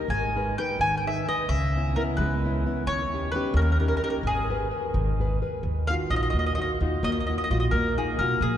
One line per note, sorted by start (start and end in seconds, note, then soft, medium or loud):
0.08 0.54 G#1 medium
0.08 0.56 G#3 medium
0.08 0.53 G#5 medium
0.36 0.58 D#4 soft
0.36 0.58 G#4 soft
0.36 0.59 B4 soft
0.58 0.95 D#4 medium
0.58 0.95 G#4 soft
0.58 0.96 B4 medium
0.58 0.80 G5 medium
0.79 1.24 G#1 medium
0.79 1.26 D#3 medium
0.79 0.97 G#5 loud
0.97 1.03 G5 medium
1.06 1.26 D#4 soft
1.06 1.27 G#4 soft
1.06 1.28 B4 soft
1.06 1.26 E5 medium
1.27 1.44 D#4 soft
1.27 1.45 G#4 soft
1.27 1.45 B4 medium
1.27 1.48 D#5 medium
1.49 1.93 C#2 medium
1.49 1.95 C#3 medium
1.49 1.92 E5 medium
1.76 1.95 B3 soft
1.76 1.95 C#4 soft
1.76 1.96 E4 medium
1.96 2.33 B3 medium
1.96 2.34 C#4 soft
1.96 2.34 E4 medium
1.96 2.02 A#4 medium
2.17 2.63 C#2 loud
2.17 2.65 G#3 medium
2.17 2.82 B4 medium
2.45 2.65 B3 soft
2.45 2.66 C#4 soft
2.45 2.66 E4 soft
2.66 2.83 B3 soft
2.66 2.84 C#4 soft
2.66 2.83 E4 soft
2.87 3.31 D#2 medium
2.87 3.33 D#3 medium
2.87 3.30 C#5 loud
3.14 3.33 C#4 soft
3.14 3.34 D#4 soft
3.14 3.35 G4 medium
3.32 3.72 C#4 medium
3.32 3.53 B4 medium
3.36 3.72 D#4 medium
3.36 3.72 G4 medium
3.54 3.99 D#2 loud
3.54 3.61 A#4 medium
3.58 4.02 A#3 medium
3.58 3.70 A#4 medium
3.72 3.79 A#4 medium
3.80 4.02 C#4 soft
3.80 4.03 D#4 soft
3.80 4.02 G4 medium
3.80 3.86 A#4 medium
3.88 3.94 A#4 medium
3.97 4.02 A#4 medium
4.03 4.21 C#4 soft
4.03 4.21 D#4 soft
4.03 4.21 G4 medium
4.03 4.09 A#4 medium
4.10 4.16 A#4 medium
4.23 4.69 G#1 medium
4.23 4.50 G#3 medium
4.23 5.39 G#4 medium
4.50 4.70 G#4 medium
4.50 4.70 A#4 soft
4.50 4.70 B4 soft
4.71 5.09 G#4 soft
4.71 5.09 A#4 medium
4.71 5.10 B4 medium
4.94 5.40 G#1 loud
4.94 5.40 D#3 medium
5.20 5.41 G#4 soft
5.20 5.42 A#4 soft
5.20 5.41 B4 soft
5.42 5.60 G#4 soft
5.42 5.60 A#4 soft
5.42 5.60 B4 soft
5.63 5.94 D#2 medium
5.63 6.11 D#3 medium
5.87 6.11 D#4 soft
5.87 6.12 F4 soft
5.87 6.12 F#4 medium
5.87 5.94 F5 medium
6.10 6.25 A#1 medium
6.10 6.50 D#4 medium
6.10 6.50 F4 soft
6.10 6.50 F#4 medium
6.10 6.15 D#5 medium
6.16 6.21 D#5 medium
6.23 6.29 D#5 medium
6.30 6.64 D#2 medium
6.30 6.38 D#5 medium
6.36 6.81 A#3 medium
6.36 6.45 D#5 medium
6.46 6.54 D#5 medium
6.55 6.81 D#4 soft
6.55 6.80 F4 soft
6.55 6.81 F#4 medium
6.55 6.60 D#5 medium
6.61 6.70 D#5 medium
6.81 6.95 D#2 medium
6.81 7.19 D#4 soft
6.81 7.19 F4 soft
6.81 7.19 F#4 medium
7.03 7.34 D#2 medium
7.03 7.49 A#3 medium
7.03 7.11 D#5 medium
7.20 7.25 D#5 medium
7.27 7.49 D#4 soft
7.27 7.50 F4 soft
7.27 7.51 F#4 medium
7.27 7.34 D#5 medium
7.38 7.43 D#5 medium
7.44 7.50 D#5 medium
7.50 7.65 A#1 medium
7.50 7.88 D#4 medium
7.50 7.88 F4 soft
7.50 7.89 F#4 medium
7.50 7.57 D#5 medium
7.60 7.65 D#5 medium
7.71 8.03 D#2 medium
7.71 8.18 A#3 medium
7.71 7.95 A#4 medium
7.98 8.19 D#4 soft
7.98 8.19 F4 soft
7.98 8.20 F#4 soft
7.98 8.18 G#4 medium
8.18 8.33 B1 medium
8.18 8.38 D#4 soft
8.18 8.38 F4 soft
8.18 8.38 F#4 medium
8.18 8.42 A#4 medium
8.41 8.57 A#1 medium
8.41 8.57 A#3 medium
8.41 8.57 G#4 medium